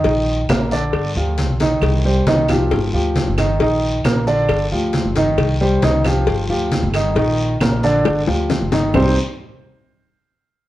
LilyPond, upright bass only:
\new Staff \with { instrumentName = "Upright bass" } { \clef bass \time 4/4 \key c \minor \tempo 4 = 135 bes,,4 bes,,4 g,,8 d,8. b,,8. | c,4 r4 g,,8 d,8. g,,8. | bes,,4 bes,,4 g,,8 d,8. g,,8. | c,4 c,4 g,,8 d,8. g,,8. |
bes,,4 bes,,4 g,,8 d,8. g,,8. | c,8 r2. r8 | }